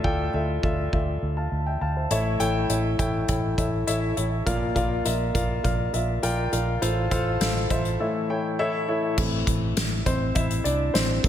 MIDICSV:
0, 0, Header, 1, 4, 480
1, 0, Start_track
1, 0, Tempo, 588813
1, 1720, Time_signature, 4, 2, 24, 8
1, 9199, End_track
2, 0, Start_track
2, 0, Title_t, "Grand piano"
2, 0, Program_c, 0, 0
2, 0, Control_c, 0, 64, 127
2, 0, Note_on_c, 0, 45, 57
2, 0, Note_on_c, 0, 65, 80
2, 0, Note_on_c, 0, 69, 74
2, 0, Note_on_c, 0, 74, 74
2, 0, Note_on_c, 0, 76, 89
2, 32, Note_off_c, 0, 65, 0
2, 32, Note_on_c, 0, 65, 80
2, 34, Note_off_c, 0, 69, 0
2, 34, Note_off_c, 0, 74, 0
2, 34, Note_on_c, 0, 69, 82
2, 34, Note_on_c, 0, 74, 72
2, 35, Note_on_c, 0, 79, 92
2, 262, Note_off_c, 0, 65, 0
2, 263, Note_off_c, 0, 69, 0
2, 263, Note_off_c, 0, 74, 0
2, 263, Note_off_c, 0, 79, 0
2, 275, Note_on_c, 0, 65, 66
2, 277, Note_on_c, 0, 69, 60
2, 277, Note_on_c, 0, 74, 61
2, 278, Note_off_c, 0, 76, 0
2, 278, Note_on_c, 0, 76, 72
2, 485, Note_off_c, 0, 45, 0
2, 501, Note_off_c, 0, 65, 0
2, 501, Note_off_c, 0, 69, 0
2, 503, Note_off_c, 0, 74, 0
2, 504, Note_off_c, 0, 76, 0
2, 513, Note_on_c, 0, 69, 64
2, 514, Note_on_c, 0, 65, 73
2, 515, Note_on_c, 0, 74, 59
2, 517, Note_on_c, 0, 76, 78
2, 742, Note_off_c, 0, 65, 0
2, 742, Note_off_c, 0, 69, 0
2, 743, Note_off_c, 0, 74, 0
2, 744, Note_off_c, 0, 76, 0
2, 756, Note_on_c, 0, 74, 64
2, 757, Note_on_c, 0, 65, 63
2, 757, Note_on_c, 0, 69, 59
2, 759, Note_on_c, 0, 76, 66
2, 984, Note_off_c, 0, 65, 0
2, 984, Note_off_c, 0, 69, 0
2, 984, Note_off_c, 0, 74, 0
2, 985, Note_off_c, 0, 76, 0
2, 1116, Note_on_c, 0, 81, 55
2, 1122, Note_on_c, 0, 77, 45
2, 1346, Note_off_c, 0, 81, 0
2, 1349, Note_off_c, 0, 77, 0
2, 1357, Note_on_c, 0, 79, 58
2, 1363, Note_on_c, 0, 76, 47
2, 1472, Note_off_c, 0, 79, 0
2, 1475, Note_off_c, 0, 76, 0
2, 1479, Note_on_c, 0, 81, 59
2, 1484, Note_on_c, 0, 77, 48
2, 1593, Note_off_c, 0, 81, 0
2, 1596, Note_off_c, 0, 77, 0
2, 1600, Note_on_c, 0, 76, 46
2, 1604, Note_on_c, 0, 72, 45
2, 1709, Note_off_c, 0, 76, 0
2, 1718, Note_on_c, 0, 64, 91
2, 1718, Note_on_c, 0, 69, 73
2, 1719, Note_on_c, 0, 45, 62
2, 1720, Note_on_c, 0, 52, 57
2, 1721, Note_on_c, 0, 73, 84
2, 1721, Note_on_c, 0, 76, 98
2, 1730, Control_c, 0, 64, 0
2, 1830, Note_off_c, 0, 72, 0
2, 1876, Control_c, 0, 64, 127
2, 1942, Note_off_c, 0, 64, 0
2, 1943, Note_off_c, 0, 69, 0
2, 1944, Note_off_c, 0, 73, 0
2, 1947, Note_off_c, 0, 76, 0
2, 1954, Note_on_c, 0, 64, 84
2, 1955, Note_on_c, 0, 69, 78
2, 1956, Note_on_c, 0, 73, 75
2, 1956, Note_on_c, 0, 79, 106
2, 2183, Note_off_c, 0, 64, 0
2, 2184, Note_off_c, 0, 69, 0
2, 2184, Note_off_c, 0, 73, 0
2, 2184, Note_off_c, 0, 79, 0
2, 2196, Note_on_c, 0, 69, 68
2, 2197, Note_on_c, 0, 64, 69
2, 2198, Note_on_c, 0, 73, 61
2, 2199, Note_on_c, 0, 76, 72
2, 2407, Note_off_c, 0, 45, 0
2, 2408, Note_off_c, 0, 52, 0
2, 2423, Note_off_c, 0, 69, 0
2, 2424, Note_off_c, 0, 64, 0
2, 2425, Note_off_c, 0, 73, 0
2, 2426, Note_off_c, 0, 76, 0
2, 2436, Note_on_c, 0, 69, 65
2, 2437, Note_on_c, 0, 64, 75
2, 2438, Note_on_c, 0, 73, 60
2, 2439, Note_on_c, 0, 79, 82
2, 2664, Note_off_c, 0, 64, 0
2, 2664, Note_off_c, 0, 69, 0
2, 2665, Note_off_c, 0, 73, 0
2, 2666, Note_off_c, 0, 79, 0
2, 2677, Note_on_c, 0, 64, 67
2, 2680, Note_on_c, 0, 69, 58
2, 2680, Note_on_c, 0, 73, 57
2, 2680, Note_on_c, 0, 79, 69
2, 2905, Note_off_c, 0, 64, 0
2, 2905, Note_off_c, 0, 69, 0
2, 2906, Note_off_c, 0, 73, 0
2, 2906, Note_off_c, 0, 79, 0
2, 2917, Note_on_c, 0, 64, 60
2, 2917, Note_on_c, 0, 69, 58
2, 2919, Note_on_c, 0, 73, 52
2, 2920, Note_on_c, 0, 76, 68
2, 3143, Note_off_c, 0, 64, 0
2, 3143, Note_off_c, 0, 69, 0
2, 3146, Note_off_c, 0, 73, 0
2, 3146, Note_off_c, 0, 76, 0
2, 3155, Note_on_c, 0, 64, 85
2, 3156, Note_on_c, 0, 69, 74
2, 3158, Note_on_c, 0, 76, 99
2, 3159, Note_on_c, 0, 73, 73
2, 3383, Note_off_c, 0, 69, 0
2, 3384, Note_off_c, 0, 64, 0
2, 3385, Note_off_c, 0, 76, 0
2, 3386, Note_off_c, 0, 73, 0
2, 3395, Note_on_c, 0, 69, 61
2, 3396, Note_on_c, 0, 64, 70
2, 3398, Note_on_c, 0, 73, 63
2, 3399, Note_on_c, 0, 76, 73
2, 3624, Note_off_c, 0, 64, 0
2, 3624, Note_off_c, 0, 69, 0
2, 3625, Note_off_c, 0, 73, 0
2, 3626, Note_off_c, 0, 76, 0
2, 3637, Note_on_c, 0, 46, 60
2, 3637, Note_on_c, 0, 53, 62
2, 3637, Note_on_c, 0, 65, 82
2, 3637, Note_on_c, 0, 70, 78
2, 3639, Note_on_c, 0, 74, 83
2, 3640, Note_on_c, 0, 77, 92
2, 3650, Control_c, 0, 64, 0
2, 3809, Control_c, 0, 64, 127
2, 3861, Note_off_c, 0, 65, 0
2, 3862, Note_off_c, 0, 70, 0
2, 3863, Note_off_c, 0, 74, 0
2, 3864, Note_off_c, 0, 77, 0
2, 3873, Note_on_c, 0, 65, 88
2, 3875, Note_on_c, 0, 70, 79
2, 3875, Note_on_c, 0, 74, 81
2, 3877, Note_on_c, 0, 77, 88
2, 4103, Note_off_c, 0, 65, 0
2, 4104, Note_off_c, 0, 70, 0
2, 4104, Note_off_c, 0, 74, 0
2, 4105, Note_off_c, 0, 77, 0
2, 4117, Note_on_c, 0, 65, 73
2, 4118, Note_on_c, 0, 70, 68
2, 4120, Note_on_c, 0, 74, 65
2, 4120, Note_on_c, 0, 76, 80
2, 4327, Note_off_c, 0, 46, 0
2, 4327, Note_off_c, 0, 53, 0
2, 4345, Note_off_c, 0, 65, 0
2, 4345, Note_off_c, 0, 70, 0
2, 4346, Note_off_c, 0, 76, 0
2, 4347, Note_off_c, 0, 74, 0
2, 4358, Note_on_c, 0, 65, 79
2, 4358, Note_on_c, 0, 70, 65
2, 4360, Note_on_c, 0, 74, 71
2, 4361, Note_on_c, 0, 77, 82
2, 4584, Note_off_c, 0, 65, 0
2, 4585, Note_off_c, 0, 70, 0
2, 4585, Note_off_c, 0, 74, 0
2, 4586, Note_off_c, 0, 77, 0
2, 4596, Note_on_c, 0, 65, 60
2, 4597, Note_on_c, 0, 70, 69
2, 4597, Note_on_c, 0, 74, 64
2, 4598, Note_on_c, 0, 77, 76
2, 4824, Note_off_c, 0, 65, 0
2, 4825, Note_off_c, 0, 70, 0
2, 4825, Note_off_c, 0, 74, 0
2, 4826, Note_off_c, 0, 77, 0
2, 4837, Note_on_c, 0, 65, 65
2, 4838, Note_on_c, 0, 70, 53
2, 4839, Note_on_c, 0, 74, 60
2, 4841, Note_on_c, 0, 76, 75
2, 5064, Note_off_c, 0, 65, 0
2, 5065, Note_off_c, 0, 70, 0
2, 5066, Note_off_c, 0, 74, 0
2, 5067, Note_off_c, 0, 76, 0
2, 5076, Note_on_c, 0, 65, 89
2, 5078, Note_on_c, 0, 74, 80
2, 5079, Note_on_c, 0, 70, 82
2, 5080, Note_on_c, 0, 79, 94
2, 5304, Note_off_c, 0, 65, 0
2, 5306, Note_off_c, 0, 70, 0
2, 5306, Note_off_c, 0, 74, 0
2, 5306, Note_off_c, 0, 79, 0
2, 5317, Note_on_c, 0, 65, 71
2, 5320, Note_on_c, 0, 70, 67
2, 5320, Note_on_c, 0, 74, 65
2, 5320, Note_on_c, 0, 77, 81
2, 5545, Note_off_c, 0, 65, 0
2, 5546, Note_off_c, 0, 70, 0
2, 5546, Note_off_c, 0, 74, 0
2, 5547, Note_off_c, 0, 77, 0
2, 5558, Note_on_c, 0, 45, 56
2, 5559, Note_on_c, 0, 65, 96
2, 5559, Note_on_c, 0, 69, 72
2, 5559, Note_on_c, 0, 72, 80
2, 5559, Note_on_c, 0, 77, 98
2, 5560, Note_on_c, 0, 57, 61
2, 5570, Control_c, 0, 64, 0
2, 5736, Control_c, 0, 64, 127
2, 5786, Note_off_c, 0, 65, 0
2, 5786, Note_off_c, 0, 69, 0
2, 5786, Note_off_c, 0, 72, 0
2, 5786, Note_off_c, 0, 77, 0
2, 5799, Note_on_c, 0, 65, 92
2, 5800, Note_on_c, 0, 69, 85
2, 5801, Note_on_c, 0, 72, 90
2, 5801, Note_on_c, 0, 77, 102
2, 6026, Note_off_c, 0, 65, 0
2, 6026, Note_off_c, 0, 69, 0
2, 6027, Note_off_c, 0, 72, 0
2, 6027, Note_off_c, 0, 77, 0
2, 6039, Note_on_c, 0, 65, 71
2, 6040, Note_on_c, 0, 69, 69
2, 6041, Note_on_c, 0, 72, 71
2, 6041, Note_on_c, 0, 77, 84
2, 6247, Note_off_c, 0, 45, 0
2, 6248, Note_off_c, 0, 57, 0
2, 6266, Note_off_c, 0, 65, 0
2, 6267, Note_off_c, 0, 69, 0
2, 6267, Note_off_c, 0, 72, 0
2, 6267, Note_off_c, 0, 77, 0
2, 6281, Note_on_c, 0, 65, 69
2, 6282, Note_on_c, 0, 69, 69
2, 6283, Note_on_c, 0, 76, 84
2, 6284, Note_on_c, 0, 72, 70
2, 6507, Note_off_c, 0, 65, 0
2, 6508, Note_off_c, 0, 69, 0
2, 6508, Note_off_c, 0, 72, 0
2, 6508, Note_off_c, 0, 76, 0
2, 6521, Note_on_c, 0, 52, 65
2, 6521, Note_on_c, 0, 64, 73
2, 6521, Note_on_c, 0, 69, 64
2, 6522, Note_on_c, 0, 45, 64
2, 6523, Note_on_c, 0, 73, 59
2, 6524, Note_on_c, 0, 76, 71
2, 6533, Control_c, 0, 64, 0
2, 6695, Control_c, 0, 64, 127
2, 6747, Note_off_c, 0, 64, 0
2, 6747, Note_off_c, 0, 69, 0
2, 6748, Note_off_c, 0, 73, 0
2, 6748, Note_off_c, 0, 76, 0
2, 6764, Note_on_c, 0, 64, 68
2, 6764, Note_on_c, 0, 69, 54
2, 6767, Note_on_c, 0, 73, 67
2, 6767, Note_on_c, 0, 79, 75
2, 6988, Note_off_c, 0, 69, 0
2, 6989, Note_off_c, 0, 64, 0
2, 6990, Note_off_c, 0, 73, 0
2, 6990, Note_off_c, 0, 79, 0
2, 7003, Note_on_c, 0, 64, 97
2, 7004, Note_on_c, 0, 69, 84
2, 7004, Note_on_c, 0, 76, 105
2, 7006, Note_on_c, 0, 73, 81
2, 7209, Note_off_c, 0, 45, 0
2, 7209, Note_off_c, 0, 52, 0
2, 7228, Note_off_c, 0, 64, 0
2, 7229, Note_off_c, 0, 69, 0
2, 7229, Note_off_c, 0, 76, 0
2, 7230, Note_off_c, 0, 73, 0
2, 7241, Note_on_c, 0, 64, 74
2, 7241, Note_on_c, 0, 69, 66
2, 7243, Note_on_c, 0, 73, 66
2, 7245, Note_on_c, 0, 76, 71
2, 7467, Note_off_c, 0, 64, 0
2, 7467, Note_off_c, 0, 69, 0
2, 7468, Note_off_c, 0, 73, 0
2, 7469, Note_off_c, 0, 76, 0
2, 7480, Note_on_c, 0, 57, 50
2, 7484, Note_on_c, 0, 60, 44
2, 7493, Control_c, 0, 64, 0
2, 7610, Control_c, 0, 64, 127
2, 8168, Note_off_c, 0, 57, 0
2, 8170, Note_off_c, 0, 60, 0
2, 8202, Note_on_c, 0, 72, 79
2, 8211, Note_on_c, 0, 60, 62
2, 8429, Note_off_c, 0, 60, 0
2, 8437, Note_on_c, 0, 76, 82
2, 8449, Note_off_c, 0, 72, 0
2, 8450, Note_on_c, 0, 64, 65
2, 8669, Note_off_c, 0, 64, 0
2, 8676, Note_on_c, 0, 74, 78
2, 8686, Note_off_c, 0, 76, 0
2, 8688, Note_on_c, 0, 62, 56
2, 8908, Note_off_c, 0, 62, 0
2, 8916, Note_on_c, 0, 72, 76
2, 8926, Note_off_c, 0, 74, 0
2, 8928, Note_on_c, 0, 60, 60
2, 9151, Note_off_c, 0, 60, 0
2, 9159, Note_on_c, 0, 58, 55
2, 9163, Note_on_c, 0, 60, 51
2, 9169, Note_on_c, 0, 62, 55
2, 9173, Control_c, 0, 64, 0
2, 9199, Note_off_c, 0, 58, 0
2, 9199, Note_off_c, 0, 60, 0
2, 9199, Note_off_c, 0, 62, 0
2, 9199, Note_off_c, 0, 72, 0
2, 9199, End_track
3, 0, Start_track
3, 0, Title_t, "Fingered electric bass"
3, 0, Program_c, 1, 33
3, 35, Note_on_c, 1, 38, 74
3, 234, Note_off_c, 1, 38, 0
3, 275, Note_on_c, 1, 38, 83
3, 474, Note_off_c, 1, 38, 0
3, 516, Note_on_c, 1, 38, 84
3, 714, Note_off_c, 1, 38, 0
3, 757, Note_on_c, 1, 38, 81
3, 955, Note_off_c, 1, 38, 0
3, 997, Note_on_c, 1, 38, 86
3, 1195, Note_off_c, 1, 38, 0
3, 1236, Note_on_c, 1, 38, 72
3, 1435, Note_off_c, 1, 38, 0
3, 1477, Note_on_c, 1, 38, 72
3, 1675, Note_off_c, 1, 38, 0
3, 1716, Note_on_c, 1, 33, 85
3, 1915, Note_off_c, 1, 33, 0
3, 1955, Note_on_c, 1, 33, 64
3, 2154, Note_off_c, 1, 33, 0
3, 2197, Note_on_c, 1, 33, 91
3, 2395, Note_off_c, 1, 33, 0
3, 2439, Note_on_c, 1, 33, 76
3, 2637, Note_off_c, 1, 33, 0
3, 2681, Note_on_c, 1, 33, 77
3, 2878, Note_off_c, 1, 33, 0
3, 2918, Note_on_c, 1, 33, 81
3, 3116, Note_off_c, 1, 33, 0
3, 3163, Note_on_c, 1, 33, 73
3, 3359, Note_off_c, 1, 33, 0
3, 3402, Note_on_c, 1, 33, 70
3, 3598, Note_off_c, 1, 33, 0
3, 3640, Note_on_c, 1, 34, 93
3, 3837, Note_off_c, 1, 34, 0
3, 3877, Note_on_c, 1, 34, 80
3, 4076, Note_off_c, 1, 34, 0
3, 4123, Note_on_c, 1, 34, 88
3, 4319, Note_off_c, 1, 34, 0
3, 4360, Note_on_c, 1, 34, 82
3, 4557, Note_off_c, 1, 34, 0
3, 4601, Note_on_c, 1, 34, 94
3, 4798, Note_off_c, 1, 34, 0
3, 4841, Note_on_c, 1, 34, 83
3, 5038, Note_off_c, 1, 34, 0
3, 5082, Note_on_c, 1, 34, 76
3, 5278, Note_off_c, 1, 34, 0
3, 5320, Note_on_c, 1, 34, 78
3, 5517, Note_off_c, 1, 34, 0
3, 5561, Note_on_c, 1, 33, 93
3, 5758, Note_off_c, 1, 33, 0
3, 5799, Note_on_c, 1, 33, 87
3, 5997, Note_off_c, 1, 33, 0
3, 6038, Note_on_c, 1, 33, 97
3, 6236, Note_off_c, 1, 33, 0
3, 6280, Note_on_c, 1, 33, 88
3, 6478, Note_off_c, 1, 33, 0
3, 7481, Note_on_c, 1, 33, 96
3, 7678, Note_off_c, 1, 33, 0
3, 7721, Note_on_c, 1, 33, 76
3, 7918, Note_off_c, 1, 33, 0
3, 7965, Note_on_c, 1, 33, 97
3, 8160, Note_off_c, 1, 33, 0
3, 8202, Note_on_c, 1, 33, 87
3, 8398, Note_off_c, 1, 33, 0
3, 8444, Note_on_c, 1, 33, 92
3, 8639, Note_off_c, 1, 33, 0
3, 8681, Note_on_c, 1, 36, 94
3, 8878, Note_off_c, 1, 36, 0
3, 8921, Note_on_c, 1, 33, 88
3, 9117, Note_off_c, 1, 33, 0
3, 9163, Note_on_c, 1, 34, 90
3, 9199, Note_off_c, 1, 34, 0
3, 9199, End_track
4, 0, Start_track
4, 0, Title_t, "Drums"
4, 35, Note_on_c, 9, 36, 63
4, 117, Note_off_c, 9, 36, 0
4, 517, Note_on_c, 9, 36, 74
4, 598, Note_off_c, 9, 36, 0
4, 758, Note_on_c, 9, 36, 62
4, 839, Note_off_c, 9, 36, 0
4, 1717, Note_on_c, 9, 42, 69
4, 1799, Note_off_c, 9, 42, 0
4, 1957, Note_on_c, 9, 42, 56
4, 2039, Note_off_c, 9, 42, 0
4, 2198, Note_on_c, 9, 42, 73
4, 2280, Note_off_c, 9, 42, 0
4, 2439, Note_on_c, 9, 36, 72
4, 2439, Note_on_c, 9, 42, 55
4, 2520, Note_off_c, 9, 36, 0
4, 2520, Note_off_c, 9, 42, 0
4, 2677, Note_on_c, 9, 42, 65
4, 2680, Note_on_c, 9, 36, 70
4, 2759, Note_off_c, 9, 42, 0
4, 2762, Note_off_c, 9, 36, 0
4, 2918, Note_on_c, 9, 36, 71
4, 2920, Note_on_c, 9, 42, 61
4, 3000, Note_off_c, 9, 36, 0
4, 3001, Note_off_c, 9, 42, 0
4, 3159, Note_on_c, 9, 42, 85
4, 3241, Note_off_c, 9, 42, 0
4, 3400, Note_on_c, 9, 42, 62
4, 3482, Note_off_c, 9, 42, 0
4, 3641, Note_on_c, 9, 36, 94
4, 3641, Note_on_c, 9, 42, 73
4, 3722, Note_off_c, 9, 36, 0
4, 3723, Note_off_c, 9, 42, 0
4, 3879, Note_on_c, 9, 36, 69
4, 3880, Note_on_c, 9, 42, 52
4, 3961, Note_off_c, 9, 36, 0
4, 3962, Note_off_c, 9, 42, 0
4, 4121, Note_on_c, 9, 42, 74
4, 4202, Note_off_c, 9, 42, 0
4, 4360, Note_on_c, 9, 36, 74
4, 4361, Note_on_c, 9, 42, 63
4, 4442, Note_off_c, 9, 36, 0
4, 4442, Note_off_c, 9, 42, 0
4, 4601, Note_on_c, 9, 42, 62
4, 4602, Note_on_c, 9, 36, 75
4, 4683, Note_off_c, 9, 42, 0
4, 4684, Note_off_c, 9, 36, 0
4, 4841, Note_on_c, 9, 42, 56
4, 4922, Note_off_c, 9, 42, 0
4, 5080, Note_on_c, 9, 42, 83
4, 5162, Note_off_c, 9, 42, 0
4, 5321, Note_on_c, 9, 42, 67
4, 5403, Note_off_c, 9, 42, 0
4, 5562, Note_on_c, 9, 42, 79
4, 5644, Note_off_c, 9, 42, 0
4, 5798, Note_on_c, 9, 42, 59
4, 5799, Note_on_c, 9, 36, 68
4, 5880, Note_off_c, 9, 42, 0
4, 5881, Note_off_c, 9, 36, 0
4, 6040, Note_on_c, 9, 42, 89
4, 6043, Note_on_c, 9, 38, 105
4, 6121, Note_off_c, 9, 42, 0
4, 6125, Note_off_c, 9, 38, 0
4, 6280, Note_on_c, 9, 36, 78
4, 6280, Note_on_c, 9, 42, 56
4, 6361, Note_off_c, 9, 42, 0
4, 6362, Note_off_c, 9, 36, 0
4, 6400, Note_on_c, 9, 42, 45
4, 6481, Note_off_c, 9, 42, 0
4, 7481, Note_on_c, 9, 49, 78
4, 7482, Note_on_c, 9, 36, 98
4, 7562, Note_off_c, 9, 49, 0
4, 7564, Note_off_c, 9, 36, 0
4, 7721, Note_on_c, 9, 36, 79
4, 7721, Note_on_c, 9, 42, 61
4, 7802, Note_off_c, 9, 42, 0
4, 7803, Note_off_c, 9, 36, 0
4, 7962, Note_on_c, 9, 42, 79
4, 7966, Note_on_c, 9, 38, 108
4, 8044, Note_off_c, 9, 42, 0
4, 8047, Note_off_c, 9, 38, 0
4, 8203, Note_on_c, 9, 36, 82
4, 8203, Note_on_c, 9, 42, 62
4, 8284, Note_off_c, 9, 36, 0
4, 8284, Note_off_c, 9, 42, 0
4, 8440, Note_on_c, 9, 42, 75
4, 8444, Note_on_c, 9, 36, 85
4, 8522, Note_off_c, 9, 42, 0
4, 8526, Note_off_c, 9, 36, 0
4, 8564, Note_on_c, 9, 42, 59
4, 8645, Note_off_c, 9, 42, 0
4, 8684, Note_on_c, 9, 42, 68
4, 8766, Note_off_c, 9, 42, 0
4, 8926, Note_on_c, 9, 42, 92
4, 8927, Note_on_c, 9, 38, 104
4, 9007, Note_off_c, 9, 42, 0
4, 9009, Note_off_c, 9, 38, 0
4, 9163, Note_on_c, 9, 36, 106
4, 9163, Note_on_c, 9, 46, 69
4, 9199, Note_off_c, 9, 36, 0
4, 9199, Note_off_c, 9, 46, 0
4, 9199, End_track
0, 0, End_of_file